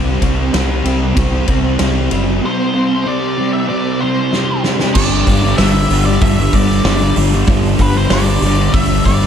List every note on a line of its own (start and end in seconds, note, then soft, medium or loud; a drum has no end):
0.00 0.18 C2 medium
0.00 0.52 C3 medium
0.00 0.23 G3 loud
0.00 0.20 C4 loud
0.20 0.49 C2 medium
0.20 0.54 G3 medium
0.20 0.55 C4 medium
0.20 kick medium
0.20 ride medium
0.52 0.81 C2 medium
0.52 1.15 C3 medium
0.52 0.87 G3 medium
0.52 0.84 C4 medium
0.52 snare loud
0.52 ride medium
0.84 1.13 C2 medium
0.84 1.17 G3 medium
0.84 1.18 C4 medium
0.84 ride medium
1.16 1.44 C2 medium
1.16 1.77 C3 medium
1.16 1.50 G3 loud
1.16 1.46 C4 loud
1.16 kick loud
1.16 ride medium
1.48 1.76 C2 medium
1.48 1.80 G3 medium
1.48 1.81 C4 medium
1.48 kick medium
1.48 ride medium
1.78 2.08 C2 medium
1.78 2.41 C3 medium
1.78 2.14 G3 medium
1.78 2.10 C4 medium
1.78 snare loud
1.78 ride medium
2.11 2.39 F#1 loud
2.11 2.42 G3 medium
2.11 2.44 C4 medium
2.11 ride medium
2.42 3.04 C3 loud
2.42 2.76 G3 loud
2.42 2.72 C4 loud
2.42 3.10 C5 medium
2.74 3.06 G3 medium
2.74 3.08 C4 medium
3.05 3.67 C3 medium
3.05 3.39 G3 medium
3.05 3.36 C4 medium
3.05 3.53 D5 medium
3.37 3.69 G3 medium
3.37 3.70 C4 medium
3.53 3.68 E5 loud
3.68 4.31 C3 medium
3.68 4.02 G3 loud
3.68 3.99 C4 loud
3.68 4.02 D5 loud
4.00 4.32 G3 medium
4.00 4.34 C4 medium
4.00 4.60 C5 medium
4.32 4.94 C3 medium
4.32 4.65 G3 medium
4.32 4.62 C4 medium
4.32 snare medium
4.64 4.95 G3 medium
4.64 4.94 C4 medium
4.64 snare medium
4.80 snare medium
4.94 5.22 G1 medium
4.94 5.25 G2 medium
4.94 5.26 D3 loud
4.94 5.29 G3 loud
4.94 5.57 D5 loud
4.94 kick loud
4.94 crash loud
5.26 5.54 G1 medium
5.26 5.58 G2 medium
5.26 5.45 D3 medium
5.26 5.42 G3 medium
5.26 kick medium
5.26 open hi-hat medium
5.43 5.59 D3 medium
5.43 5.61 G3 medium
5.58 5.85 G1 medium
5.58 5.90 G2 medium
5.58 5.91 D3 loud
5.58 5.93 G3 loud
5.58 6.05 E5 loud
5.58 snare loud
5.58 open hi-hat medium
5.90 6.17 G1 medium
5.90 6.38 G2 medium
5.90 6.08 D3 medium
5.90 6.06 G3 medium
5.90 open hi-hat medium
6.05 6.37 G3 medium
6.05 6.21 D5 loud
6.09 6.39 D3 medium
6.21 6.49 G1 medium
6.21 6.54 E5 loud
6.21 kick loud
6.21 open hi-hat medium
6.38 6.54 D3 medium
6.38 6.56 G3 medium
6.53 6.80 G1 medium
6.53 6.83 G2 medium
6.53 6.85 D3 medium
6.53 6.87 G3 medium
6.53 7.13 D5 medium
6.53 kick medium
6.53 open hi-hat medium
6.84 7.11 G1 loud
6.84 7.14 G2 loud
6.84 7.02 D3 loud
6.84 7.00 G3 loud
6.84 snare loud
6.84 open hi-hat medium
7.00 7.16 D3 medium
7.00 7.18 G3 medium
7.16 7.43 G1 medium
7.16 7.46 G2 medium
7.16 7.34 D3 medium
7.16 7.31 G3 medium
7.16 open hi-hat medium
7.32 7.48 D3 medium
7.32 7.50 G3 medium
7.47 7.75 G1 loud
7.47 7.77 G2 loud
7.47 7.79 D3 loud
7.47 7.81 G3 loud
7.47 kick loud
7.47 open hi-hat medium
7.79 8.06 G1 medium
7.79 8.09 G2 medium
7.79 7.96 D3 medium
7.79 7.94 G3 medium
7.79 7.97 B4 medium
7.79 kick medium
7.79 open hi-hat medium
7.94 8.10 D3 medium
7.94 8.13 G3 medium
7.94 8.12 C5 medium
8.10 8.37 G1 medium
8.10 8.41 G2 loud
8.10 8.42 D3 loud
8.10 8.45 G3 loud
8.10 8.73 D5 loud
8.10 snare loud
8.10 open hi-hat medium
8.42 8.69 G1 medium
8.42 8.89 G2 medium
8.42 8.60 D3 medium
8.42 8.57 G3 medium
8.42 open hi-hat medium
8.58 8.91 D3 medium
8.58 8.88 G3 medium
8.74 9.00 G1 medium
8.74 9.05 E5 loud
8.74 kick loud
8.74 open hi-hat loud
8.89 9.05 D3 medium
8.89 9.07 G3 medium
9.05 9.27 G1 medium
9.05 9.27 G2 medium
9.05 9.27 D3 medium
9.05 9.27 G3 medium
9.05 9.27 D5 loud
9.05 kick medium
9.05 open hi-hat medium